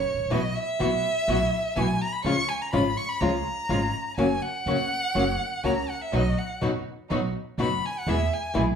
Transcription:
0.00 0.34 C#5 medium
0.14 0.19 G#1 medium
0.20 0.25 A1 medium
0.25 0.31 A#1 medium
0.30 0.52 B1 medium
0.30 0.40 B2 medium
0.30 0.40 E3 medium
0.30 0.51 B3 medium
0.30 0.40 B3 medium
0.30 0.51 E4 medium
0.30 0.40 E4 medium
0.30 0.52 F#4 medium
0.30 0.40 F#4 medium
0.30 0.57 D#5 medium
0.56 1.78 E5 loud
0.79 1.00 B1 medium
0.79 0.89 B2 medium
0.79 0.89 E3 medium
0.79 1.00 B3 medium
0.79 0.89 B3 medium
0.79 1.00 E4 medium
0.79 0.89 E4 medium
0.79 1.00 F#4 medium
0.79 0.89 F#4 medium
1.28 1.48 B1 medium
1.28 1.37 B2 medium
1.28 1.37 E3 medium
1.28 1.48 B3 medium
1.28 1.37 B3 medium
1.28 1.48 E4 medium
1.28 1.38 E4 medium
1.28 1.49 F#4 medium
1.28 1.38 F#4 medium
1.76 1.97 B1 medium
1.76 1.85 B2 medium
1.76 1.85 E3 medium
1.76 1.97 B3 medium
1.76 1.86 B3 medium
1.76 1.97 E4 medium
1.76 1.86 E4 medium
1.76 1.97 F#4 medium
1.76 1.86 F#4 medium
1.76 2.03 G#5 medium
2.01 2.14 A#5 medium
2.13 2.24 B5 medium
2.24 2.45 C#2 medium
2.24 2.34 C#3 medium
2.24 2.34 F3 medium
2.24 2.45 G#3 medium
2.24 2.34 G#3 medium
2.24 2.45 C#4 medium
2.24 2.34 C#4 medium
2.24 2.45 F4 medium
2.24 2.35 F4 medium
2.24 2.50 C#6 loud
2.49 2.63 G#5 medium
2.62 2.73 A#5 medium
2.73 2.94 G#1 medium
2.73 2.82 C#3 medium
2.73 2.82 F3 medium
2.73 2.93 G#3 medium
2.73 2.82 G#3 medium
2.73 2.93 C#4 medium
2.73 2.82 C#4 medium
2.73 2.93 F4 medium
2.73 2.82 F4 medium
2.73 2.98 B5 medium
2.97 3.11 C#6 medium
3.09 3.22 B5 medium
3.21 3.41 C#2 loud
3.21 3.30 C#3 medium
3.21 3.30 F3 medium
3.21 3.42 G#3 medium
3.21 3.31 G#3 medium
3.21 3.42 C#4 medium
3.21 3.31 C#4 medium
3.21 3.42 F4 medium
3.21 3.31 F4 medium
3.21 4.17 A#5 medium
3.69 3.90 G#1 medium
3.69 3.78 C#3 medium
3.69 3.79 F3 medium
3.69 3.90 G#3 medium
3.69 3.78 G#3 medium
3.69 3.90 C#4 medium
3.69 3.79 C#4 medium
3.69 3.90 F4 medium
3.69 3.79 F4 medium
4.17 4.38 F#1 medium
4.17 4.27 C#3 medium
4.17 4.27 F#3 medium
4.17 4.38 A#3 medium
4.17 4.27 A#3 medium
4.17 4.38 C#4 medium
4.17 4.27 C#4 medium
4.17 4.38 F#4 medium
4.17 4.27 F#4 loud
4.17 4.44 G#5 medium
4.43 5.67 F#5 loud
4.66 4.87 C#2 medium
4.66 4.75 C#3 medium
4.66 4.76 F#3 medium
4.66 4.87 A#3 medium
4.66 4.76 A#3 medium
4.66 4.87 C#4 medium
4.66 4.76 C#4 medium
4.66 4.87 F#4 medium
4.66 4.76 F#4 medium
5.15 5.35 F#1 medium
5.15 5.24 C#3 medium
5.15 5.24 F#3 medium
5.15 5.35 A#3 medium
5.15 5.24 A#3 medium
5.15 5.35 C#4 medium
5.15 5.24 C#4 medium
5.15 5.35 F#4 medium
5.15 5.24 F#4 medium
5.64 5.84 C#2 medium
5.64 5.73 C#3 medium
5.64 5.73 F#3 medium
5.64 5.84 A#3 medium
5.64 5.73 A#3 medium
5.64 5.84 C#4 medium
5.64 5.73 C#4 medium
5.64 5.84 F#4 medium
5.64 5.73 F#4 medium
5.64 5.91 A#5 medium
5.90 6.03 F#5 medium
6.02 6.16 E5 medium
6.12 6.33 B1 medium
6.12 6.21 B2 medium
6.12 6.22 F#3 medium
6.12 6.33 B3 medium
6.12 6.22 B3 medium
6.12 6.33 D#4 medium
6.12 6.22 D#4 medium
6.12 6.33 F#4 medium
6.12 6.22 F#4 medium
6.12 6.40 D#5 medium
6.38 6.62 F#5 medium
6.61 6.82 F#1 medium
6.61 6.70 B2 medium
6.61 6.70 F#3 medium
6.61 6.82 B3 medium
6.61 6.71 B3 medium
6.61 6.82 D#4 medium
6.61 6.71 D#4 medium
6.61 6.82 F#4 medium
6.61 6.71 F#4 loud
7.10 7.31 B1 medium
7.10 7.19 B2 medium
7.10 7.19 F#3 medium
7.10 7.30 B3 medium
7.10 7.19 B3 medium
7.10 7.30 D#4 medium
7.10 7.19 D#4 medium
7.10 7.30 F#4 medium
7.10 7.20 F#4 medium
7.58 7.79 F#1 medium
7.58 7.67 B2 medium
7.58 7.67 F#3 medium
7.58 7.79 B3 medium
7.58 7.68 B3 medium
7.58 7.79 D#4 medium
7.58 7.68 D#4 medium
7.58 7.79 F#4 medium
7.58 7.68 F#4 medium
7.58 7.88 B5 medium
7.86 8.01 G#5 medium
7.99 8.11 F#5 medium
8.07 8.27 E2 medium
8.07 8.16 B2 medium
8.07 8.16 E3 medium
8.07 8.16 G#3 medium
8.07 8.27 B3 medium
8.07 8.16 B3 medium
8.07 8.28 E4 medium
8.07 8.16 E4 medium
8.07 8.28 G#4 medium
8.07 8.35 E5 medium
8.34 8.57 G#5 medium
8.54 8.75 B1 medium
8.54 8.63 B2 medium
8.54 8.64 E3 medium
8.54 8.64 G#3 medium
8.54 8.75 B3 medium
8.54 8.64 B3 medium
8.54 8.64 E4 medium
8.54 8.75 E4 medium
8.54 8.75 G#4 medium

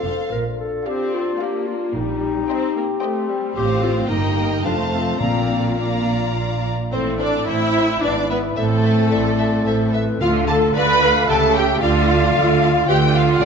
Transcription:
0.00 0.12 F1 soft
0.00 0.11 F2 soft
0.00 0.31 A4 soft
0.00 0.31 C5 soft
0.00 0.31 F5 soft
0.32 0.75 A#1 soft
0.32 0.75 A#2 soft
0.32 1.91 D4 soft
0.32 1.92 F4 soft
0.32 0.44 A#4 medium
0.60 0.88 A4 soft
0.86 1.37 C4 medium
0.86 1.16 G4 medium
0.86 1.27 D5 soft
0.86 1.27 F5 soft
1.15 1.43 F4 medium
1.41 1.95 A#3 soft
1.41 1.69 G4 medium
1.41 1.81 D5 soft
1.41 1.81 F5 soft
1.41 1.82 F5 soft
1.67 1.96 F4 medium
1.95 2.38 A#1 medium
1.95 2.38 A#2 medium
1.95 2.49 G3 soft
1.95 4.06 C4 medium
1.95 3.02 D#4 medium
1.95 3.52 G4 medium
2.49 2.75 C4 medium
2.49 2.89 C5 soft
2.49 2.89 D#5 soft
2.49 2.89 G5 soft
2.76 2.84 A#3 soft
3.02 3.29 A3 soft
3.02 3.42 C5 medium
3.02 3.42 D#5 medium
3.02 3.42 G5 medium
3.29 3.56 G3 soft
3.56 4.05 A1 medium
3.56 4.06 A2 medium
3.56 4.09 C4 medium
3.56 4.06 F4 medium
3.56 3.85 G4 medium
3.56 4.06 C5 soft
3.56 4.06 F5 medium
3.83 4.08 F4 medium
4.09 4.64 G1 soft
4.09 4.64 G2 medium
4.09 4.63 A#3 medium
4.09 4.60 A#3 soft
4.09 4.62 D#4 medium
4.09 4.60 G4 medium
4.09 4.64 A#4 medium
4.09 4.63 D#5 soft
4.09 4.64 G5 soft
4.63 5.20 F1 soft
4.63 5.20 F2 soft
4.63 5.19 A3 soft
4.63 5.16 A3 soft
4.63 4.76 D4 medium
4.63 6.60 F4 soft
4.63 5.21 C5 soft
4.63 5.20 F5 soft
4.63 5.20 A5 soft
4.92 5.20 C4 soft
5.20 6.69 A#1 soft
5.20 6.69 A#2 soft
5.20 6.03 A#2 soft
5.20 6.64 A#3 soft
5.20 5.80 C4 medium
5.20 6.60 D4 soft
5.20 5.77 D5 soft
5.20 5.77 F5 soft
5.20 5.77 A#5 soft
5.78 6.35 A#3 soft
5.78 6.70 D5 soft
5.78 6.70 F5 soft
5.78 6.70 A#5 soft
6.92 7.41 A1 medium
6.92 7.41 A2 medium
6.92 7.18 C4 medium
6.92 7.99 C4 soft
6.92 10.17 E4 soft
6.92 7.44 A4 soft
6.92 7.00 C5 medium
6.92 6.99 C5 medium
6.92 7.01 C5 soft
7.19 7.47 D4 medium
7.19 7.27 C5 soft
7.19 7.47 D5 medium
7.47 7.96 A1 medium
7.47 7.96 A2 soft
7.47 8.02 E4 medium
7.47 7.56 C5 soft
7.47 8.02 C5 medium
7.47 8.02 E5 medium
7.76 7.84 C5 soft
8.02 8.50 G#1 soft
8.02 8.50 G#2 medium
8.02 8.57 B3 soft
8.02 8.30 D4 medium
8.02 8.58 B4 soft
8.02 8.29 D5 medium
8.02 8.10 E5 soft
8.29 8.38 B3 medium
8.29 8.56 B4 medium
8.29 8.38 B4 soft
8.29 8.38 E5 soft
8.56 9.05 A1 medium
8.56 9.05 A2 medium
8.56 9.91 A3 medium
8.56 10.18 C4 medium
8.56 9.91 A4 medium
8.56 9.92 A4 medium
8.56 9.13 C5 medium
8.56 8.64 E5 soft
8.85 8.93 E5 soft
9.11 9.60 A1 medium
9.11 9.60 A2 medium
9.11 9.69 D5 medium
9.11 9.20 E5 soft
9.39 9.47 E5 soft
9.66 10.14 A1 medium
9.66 10.15 A2 medium
9.66 9.95 C5 soft
9.66 9.75 E5 soft
9.93 10.23 B4 medium
9.93 10.02 E5 soft
10.20 10.68 D2 medium
10.20 10.98 D3 medium
10.20 10.69 D3 medium
10.20 13.24 A3 medium
10.20 10.46 F4 medium
10.20 11.27 F4 medium
10.20 10.76 A4 medium
10.20 10.29 F5 medium
10.20 10.46 F5 medium
10.20 10.30 F5 medium
10.48 10.75 A4 medium
10.48 10.57 F5 soft
10.48 10.56 A5 medium
10.48 10.75 A5 medium
10.75 11.22 D2 medium
10.75 11.22 D3 medium
10.75 11.28 B4 medium
10.75 11.03 D5 medium
10.75 10.85 F5 medium
10.75 11.28 B5 medium
11.02 11.30 F5 medium
11.02 11.11 F5 soft
11.28 11.75 C#2 medium
11.28 11.75 C#3 medium
11.28 11.82 G4 medium
11.28 11.54 A4 medium
11.28 11.81 E5 medium
11.28 11.38 G5 medium
11.28 11.55 A5 medium
11.55 11.82 G4 medium
11.55 11.81 G5 medium
11.55 11.65 G5 soft
11.81 12.29 D2 medium
11.81 12.29 D3 medium
11.81 12.86 F4 medium
11.81 13.24 F4 medium
11.81 12.90 D5 medium
11.81 12.86 F5 medium
11.81 12.89 F5 medium
11.81 11.91 F5 medium
12.10 12.18 F5 soft
12.35 12.82 D2 medium
12.35 12.82 D3 medium
12.35 12.44 F5 medium
12.63 12.71 F5 medium
12.88 13.35 D2 medium
12.88 13.35 D3 medium
12.88 12.97 G4 medium
12.88 13.23 B4 medium
12.88 12.97 F5 medium
12.88 13.14 G5 medium
12.88 13.15 G5 medium
13.15 13.41 F4 medium
13.15 13.23 F5 soft
13.15 13.41 F5 medium
13.15 13.42 F5 medium
13.41 13.45 A1 medium
13.41 13.45 A2 medium
13.41 13.45 C4 medium
13.41 13.45 D4 medium
13.41 13.45 F#4 medium
13.41 13.45 D5 medium
13.41 13.45 F#5 medium

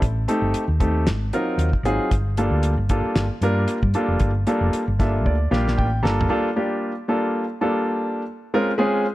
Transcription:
0.02 0.26 A1 loud
0.02 kick medium
0.02 closed hi-hat medium
0.28 0.63 A3 medium
0.28 0.63 C4 medium
0.28 0.63 D#4 medium
0.28 0.63 G4 medium
0.28 0.63 A4 medium
0.28 closed hi-hat medium
0.42 0.53 G1 medium
0.54 muted fingered electric bass stroke soft
0.54 closed hi-hat medium
0.68 1.08 D#2 medium
0.80 1.07 A3 medium
0.80 1.06 C4 medium
0.80 1.07 D#4 medium
0.80 1.07 G4 medium
0.80 1.06 A4 medium
0.80 kick medium
0.80 closed hi-hat medium
1.06 1.30 G#1 medium
1.06 snare medium
1.06 closed hi-hat medium
1.33 1.68 F#3 medium
1.33 1.68 C4 medium
1.33 1.68 D#4 medium
1.33 1.68 F4 medium
1.33 1.68 A#4 medium
1.33 closed hi-hat medium
1.58 1.71 D#2 medium
1.58 closed hi-hat medium
1.73 kick medium
1.83 1.97 G#1 medium
1.83 2.11 F#3 medium
1.83 2.11 C4 medium
1.83 2.11 D#4 medium
1.83 2.11 F4 medium
1.83 2.12 G#4 medium
1.83 closed hi-hat medium
2.11 2.48 G1 medium
2.11 kick loud
2.11 closed hi-hat medium
2.37 2.73 G3 medium
2.37 2.72 A#3 medium
2.37 2.73 D4 medium
2.37 2.73 F4 medium
2.37 2.73 A4 medium
2.37 closed hi-hat medium
2.51 2.75 D2 medium
2.63 closed hi-hat medium
2.78 3.02 G1 medium
2.89 3.25 G3 medium
2.89 3.25 A#3 medium
2.89 3.25 D4 medium
2.89 3.25 F4 medium
2.89 3.25 A4 medium
2.89 kick medium
2.89 closed hi-hat medium
3.15 3.29 G1 medium
3.15 snare loud
3.15 closed hi-hat medium
3.41 3.65 G2 medium
3.41 3.77 G3 medium
3.41 3.77 A#3 medium
3.41 3.77 D4 medium
3.41 3.77 F4 medium
3.41 3.78 A#4 medium
3.41 closed hi-hat soft
3.68 closed hi-hat medium
3.83 3.93 G2 medium
3.83 kick medium
3.94 4.30 G3 medium
3.94 4.30 A#3 medium
3.94 4.30 D4 medium
3.94 4.30 F4 medium
3.94 4.30 A4 medium
3.94 closed hi-hat soft
4.08 4.19 F1 medium
4.19 4.44 G1 medium
4.19 kick loud
4.19 closed hi-hat medium
4.47 4.82 G3 medium
4.47 4.82 A#3 medium
4.47 4.82 D4 medium
4.47 4.82 F4 medium
4.47 4.82 A4 medium
4.47 closed hi-hat medium
4.61 4.72 F1 medium
4.73 closed hi-hat medium
4.88 5.26 G1 medium
4.99 5.34 G3 medium
4.99 5.34 A#3 medium
4.99 5.34 D4 medium
4.99 5.34 F4 medium
4.99 5.34 A4 medium
4.99 5.24 E5 medium
4.99 kick medium
4.99 snare soft
4.99 closed hi-hat medium
5.26 5.49 D2 medium
5.26 5.50 D5 medium
5.26 kick medium
5.51 5.75 A#1 medium
5.51 5.86 G3 medium
5.51 5.86 A#3 medium
5.51 5.86 D4 medium
5.51 5.86 F4 medium
5.51 5.87 G4 medium
5.51 5.76 F5 medium
5.51 snare medium
5.68 snare medium
5.78 6.02 A1 medium
5.78 6.02 G5 medium
5.78 kick medium
6.03 6.27 G1 medium
6.03 6.28 G3 medium
6.03 6.27 A#3 medium
6.03 6.28 D4 medium
6.03 6.28 F4 medium
6.03 6.28 A4 medium
6.03 6.28 A#5 medium
6.03 snare medium
6.21 floor tom medium
6.29 6.48 G3 medium
6.29 6.48 A#3 medium
6.29 6.48 D4 medium
6.29 6.48 F4 medium
6.29 6.48 A4 medium
6.56 6.91 G3 medium
6.56 6.91 A#3 medium
6.56 6.91 D4 medium
6.56 6.91 F4 medium
6.56 6.91 G4 medium
7.08 7.43 G3 medium
7.08 7.44 A#3 medium
7.08 7.44 D4 medium
7.08 7.44 F4 medium
7.08 7.44 A4 medium
7.61 8.22 G3 medium
7.61 8.22 A#3 medium
7.61 8.22 D4 medium
7.61 8.22 F4 medium
7.61 8.22 A4 medium
8.54 8.70 G#3 medium
8.54 8.70 C4 medium
8.54 8.70 C#4 medium
8.54 8.70 F4 medium
8.54 8.70 A#4 medium
8.78 9.05 G#3 medium
8.78 9.05 C4 medium
8.78 9.05 C#4 medium
8.78 9.05 F4 medium
8.78 9.05 G#4 medium

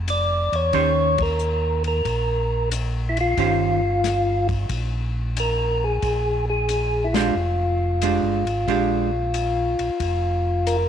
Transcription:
0.00 0.49 F1 medium
0.08 0.56 D5 medium
0.08 hi-hat pedal medium
0.08 ride medium
0.52 0.72 E2 medium
0.52 1.22 C#5 loud
0.52 ride soft
0.73 2.02 D#2 medium
0.73 1.14 D#3 medium
0.73 1.15 C#4 medium
0.73 1.15 G4 medium
0.73 1.15 C5 medium
0.73 kick soft
0.73 ride soft
1.18 1.83 A#4 medium
1.18 kick medium
1.18 ride medium
1.39 hi-hat pedal medium
1.84 2.69 A#4 medium
1.84 ride soft
2.05 3.34 A#1 medium
2.05 kick soft
2.05 ride soft
2.71 hi-hat pedal medium
2.71 ride medium
3.09 3.18 E4 medium
3.17 4.47 F4 loud
3.17 ride soft
3.37 4.66 G1 medium
3.37 3.79 D#3 medium
3.37 3.80 C#4 medium
3.37 3.79 G4 medium
3.37 3.80 C5 medium
3.37 kick soft
3.37 ride medium
4.04 snare soft
4.04 hi-hat pedal medium
4.04 ride medium
4.49 kick soft
4.49 ride soft
4.69 5.98 A#1 medium
4.69 kick soft
4.69 ride medium
5.37 5.85 A#4 medium
5.37 hi-hat pedal soft
5.37 ride medium
5.84 6.45 G#4 medium
6.02 7.31 A#1 medium
6.02 kick soft
6.02 ride soft
6.50 7.07 G#4 medium
6.69 hi-hat pedal soft
6.69 ride medium
7.04 7.14 E4 medium
7.13 7.34 G#3 medium
7.13 7.34 D4 medium
7.13 10.77 F4 medium
7.13 7.34 G4 medium
7.13 snare medium
7.13 ride medium
7.35 8.20 F1 medium
8.02 8.43 G#3 medium
8.02 8.44 D4 medium
8.02 8.44 G4 medium
8.02 hi-hat pedal medium
8.02 ride medium
8.23 8.44 G1 medium
8.45 8.66 G#1 medium
8.45 ride soft
8.68 9.76 A#1 medium
8.68 9.09 G#3 medium
8.68 9.10 D4 medium
8.68 9.10 G4 medium
8.68 kick soft
8.68 ride soft
9.34 hi-hat pedal soft
9.34 ride medium
9.79 9.90 A#1 soft
9.79 ride soft
10.00 10.89 F1 medium
10.00 kick soft
10.00 ride medium
10.67 10.89 A#4 medium
10.67 hi-hat pedal soft
10.67 ride medium

